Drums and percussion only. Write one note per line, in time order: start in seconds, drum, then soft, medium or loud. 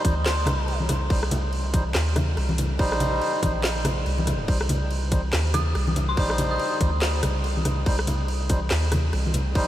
0.05 kick loud
0.05 closed hi-hat medium
0.05 high conga medium
0.26 snare loud
0.26 clap medium
0.26 crash medium
0.46 cross-stick medium
0.46 closed hi-hat medium
0.46 low conga medium
0.68 crash soft
0.80 high conga medium
0.89 cross-stick medium
0.89 closed hi-hat medium
0.89 low conga medium
1.10 kick loud
1.10 crash medium
1.23 cross-stick medium
1.31 closed hi-hat medium
1.31 low conga medium
1.53 crash soft
1.74 kick loud
1.74 closed hi-hat medium
1.74 high conga medium
1.95 snare loud
1.95 clap medium
1.95 crash medium
2.16 cross-stick medium
2.16 closed hi-hat medium
2.16 high conga medium
2.16 low conga loud
2.37 cross-stick medium
2.37 crash soft
2.49 high conga medium
2.58 closed hi-hat medium
2.58 low conga medium
2.79 kick loud
2.79 crash medium
2.92 cross-stick medium
3.00 closed hi-hat medium
3.00 low conga medium
3.21 crash soft
3.42 kick loud
3.42 closed hi-hat medium
3.42 high conga medium
3.64 snare loud
3.64 clap medium
3.64 crash medium
3.85 cross-stick medium
3.85 closed hi-hat medium
3.85 low conga medium
4.06 crash soft
4.18 high conga medium
4.27 cross-stick medium
4.27 closed hi-hat medium
4.27 low conga medium
4.48 kick loud
4.48 crash medium
4.61 cross-stick medium
4.69 closed hi-hat medium
4.69 low conga medium
4.91 crash soft
5.11 kick loud
5.11 closed hi-hat medium
5.11 high conga medium
5.33 snare loud
5.33 clap medium
5.33 crash medium
5.54 cross-stick medium
5.54 closed hi-hat medium
5.54 high conga medium
5.54 low conga medium
5.75 cross-stick medium
5.75 crash soft
5.87 high conga medium
5.96 closed hi-hat medium
5.96 low conga medium
6.17 kick loud
6.17 crash medium
6.30 cross-stick medium
6.38 closed hi-hat medium
6.38 low conga medium
6.60 crash soft
6.80 kick loud
6.80 closed hi-hat medium
6.80 high conga medium
7.02 snare loud
7.02 clap medium
7.02 crash medium
7.23 cross-stick medium
7.23 closed hi-hat medium
7.23 low conga medium
7.44 crash soft
7.57 high conga medium
7.65 cross-stick medium
7.65 closed hi-hat medium
7.65 low conga medium
7.86 kick loud
7.86 crash medium
7.99 cross-stick medium
8.07 closed hi-hat medium
8.07 low conga medium
8.28 crash medium
8.49 kick loud
8.49 closed hi-hat medium
8.49 high conga medium
8.71 snare loud
8.71 clap medium
8.71 crash medium
8.92 cross-stick medium
8.92 closed hi-hat medium
8.92 high conga medium
8.92 low conga medium
9.13 cross-stick medium
9.13 crash soft
9.26 high conga medium
9.34 closed hi-hat medium
9.34 low conga medium
9.55 kick loud
9.55 crash medium